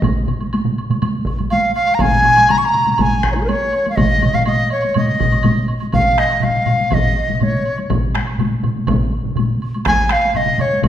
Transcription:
0.02 taiko, taiko mid, taiko high, high woodblock
0.28 taiko mid, high woodblock
0.41 taiko high, high woodblock
0.53 taiko high, high woodblock
0.65 taiko mid
0.78 high woodblock
0.90 taiko mid, taiko high, high woodblock
1.02 taiko mid, taiko high, high woodblock
1.25 taiko, high woodblock
1.39 taiko mid, taiko high, high woodblock
1.50 dizi F5, taiko high, high woodblock
1.75 dizi F5, high woodblock
1.87 high woodblock
1.94 dizi A#5
1.99 dizi G#5, taiko, taiko low-mid, taiko high, high woodblock
2.12 taiko low-mid
2.24 taiko low-mid, high woodblock
2.36 taiko high, high woodblock
2.49 dizi A#5, taiko low-mid, taiko high, high woodblock
2.58 dizi C#6
2.65 dizi A#5
2.73 taiko low-mid, high woodblock
2.86 taiko low-mid, taiko high, high woodblock
2.94 dizi A#5
2.98 dizi G#5, taiko, taiko low-mid, taiko high, high woodblock
3.23 taiko rim, taiko, high woodblock
3.32 dizi D#4 C#5
3.36 dizi F4, taiko high, high woodblock
3.41 dizi G#4 A#4
3.48 dizi C#5, taiko high, high woodblock
3.73 high woodblock
3.86 taiko high, high woodblock
3.90 dizi F5
3.96 dizi D#5, taiko, taiko low-mid, taiko mid, taiko high, high woodblock
4.22 taiko low-mid, taiko mid, taiko high, high woodblock
4.33 dizi F5, taiko low-mid, taiko mid, high woodblock
4.46 dizi D#5, taiko high, high woodblock
4.70 dizi C#5, high woodblock
4.82 taiko high, high woodblock
4.94 dizi D#5, taiko low-mid, taiko mid, taiko high, high woodblock
5.20 taiko, taiko low-mid, taiko mid, high woodblock
5.32 taiko high, high woodblock
5.43 taiko low-mid, taiko mid, taiko high, high woodblock
5.68 high woodblock
5.80 taiko high, high woodblock
5.92 dizi F5, taiko, taiko low-mid, taiko mid, taiko high, high woodblock
6.18 dizi D#5, taiko rim, taiko high
6.30 taiko high, high woodblock
6.42 dizi F5, taiko low-mid, taiko mid, taiko high, high woodblock
6.66 taiko low-mid, taiko mid, high woodblock
6.81 taiko high
6.91 dizi D#5, taiko, taiko low-mid, taiko mid, taiko high, high woodblock
7.28 taiko low-mid, taiko mid, taiko high
7.35 dizi D#5
7.40 dizi C#5, taiko low-mid, taiko mid, taiko high, high woodblock
7.66 high woodblock
7.77 taiko high, high woodblock
7.90 taiko, taiko low-mid, taiko mid, taiko high, high woodblock
8.15 taiko rim, taiko high
8.27 high woodblock
8.39 taiko low-mid, taiko mid, taiko high, high woodblock
8.63 taiko low-mid, taiko mid, high woodblock
8.78 taiko high
8.87 taiko, taiko low-mid, taiko mid, taiko high, high woodblock
9.24 taiko low-mid, taiko mid
9.35 taiko low-mid, taiko mid, taiko high, high woodblock
9.62 high woodblock
9.74 taiko high, high woodblock
9.85 dizi G#5, taiko rim, taiko, taiko high, high woodblock
10.09 dizi F5, taiko rim, taiko high
10.25 taiko high
10.34 dizi D#5, taiko low-mid, taiko mid, taiko high, high woodblock
10.45 taiko low-mid, taiko mid
10.58 dizi C#5, taiko low-mid, taiko mid, high woodblock
10.73 taiko high
10.82 dizi D#5, taiko, taiko low-mid, taiko mid, high woodblock

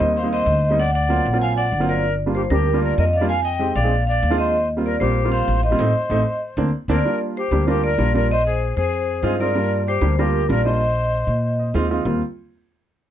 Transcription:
Already playing: flute C5, vibraphone D#5
0.00 upright bass D#2, grand piano G3 A#3 C4 D#4
0.16 flute C5, vibraphone F5
0.23 grand piano G3 A#3 C4 D#4
0.32 flute C5, vibraphone D#5
0.46 upright bass D2
0.70 grand piano G3 A#3 C4 D#4
0.78 flute D5, vibraphone F#5
0.94 flute D5, vibraphone F#5
1.09 grand piano F#3 A#3 C4 F4
1.25 upright bass A#1
1.33 grand piano F#3 A#3 C4 F4
1.41 flute F5, vibraphone G#5
1.56 flute D5, vibraphone F#5
1.72 upright bass G1
1.80 grand piano F#3 A#3 C4 F4
1.88 flute A#4, vibraphone D5
2.26 grand piano G3 A#3 D4 F4
2.35 flute G4, vibraphone C5
2.50 upright bass D2, grand piano G3 A#3 D4 G4, flute G4, vibraphone A#4
2.73 grand piano G3 A#3 D4 F4
2.82 flute A#4, vibraphone D5
2.98 upright bass F2, flute A#4, vibraphone D#5
3.13 flute D5, vibraphone F5
3.21 grand piano G3 A#3 D4 F4
3.28 flute F5, vibraphone G#5
3.43 flute D#5, vibraphone G5
3.59 grand piano G#3 C4 D#4 G4
3.75 upright bass A#1, flute D5, vibraphone F5
3.83 grand piano G#3 C4 D#4 G#4
4.07 flute D5, vibraphone F5
4.23 upright bass D#2
4.30 grand piano G#3 C4 D4 F4
4.38 flute C5, vibraphone D#5
4.77 grand piano G3 A#3 C4 F4
4.85 flute A#4, vibraphone D5
5.00 upright bass A#1, grand piano G3 A#3 C4 F4, flute G4, vibraphone C5
5.24 grand piano G3 A#3 C4 F4
5.32 flute C5, vibraphone F5
5.48 upright bass A1
5.63 flute C5, vibraphone D#5
5.71 grand piano G3 A#3 C4 F4
5.79 upright bass A1, grand piano A3 C4 D#4
6.10 upright bass A1, grand piano A3 C4 D#4
6.57 upright bass D2, grand piano A#3 C4 D4
6.88 upright bass D2, grand piano A#3 C4 D4, flute A#4, vibraphone D5
7.05 grand piano G3 A#3 D4 F4
7.37 flute G4, vibraphone C5
7.51 upright bass D2, grand piano G3 A#3 D4 G4
7.67 grand piano G3 A#3 D4 F4, flute G4, vibraphone A#4
7.84 flute A#4, vibraphone D5
7.98 upright bass A#1, grand piano G3 A#3 D4 F4
8.14 grand piano G3 A#3 D4 F4, flute A#4, vibraphone D5
8.31 flute C5, vibraphone D#5
8.46 flute G#4, vibraphone C5
8.77 upright bass F2, flute G#4, vibraphone C5
9.23 upright bass G2, grand piano G#3 C4 D#4 F4
9.39 grand piano G#3 C4 D#4 F4, flute A#4, vibraphone D5
9.55 grand piano G3 A#3 D4 F4
9.87 flute G4, vibraphone C5
10.01 upright bass D2, grand piano G3 A#3 D4 G4
10.18 grand piano G3 A#3 D4 F4, flute G4, vibraphone A#4
10.49 upright bass A#1, grand piano G3 A#3 D4 F4, flute A#4, vibraphone D5
10.65 grand piano G3 A#3 D4 F4, flute C5, vibraphone D#5
11.27 upright bass A#2
11.59 grand piano D#5
11.74 upright bass D#2, grand piano G#3 C4 D#4 F4 F5
11.90 grand piano G#3 C4 D#4 F4
12.05 upright bass D#2, grand piano G3 A#3 C4 F4

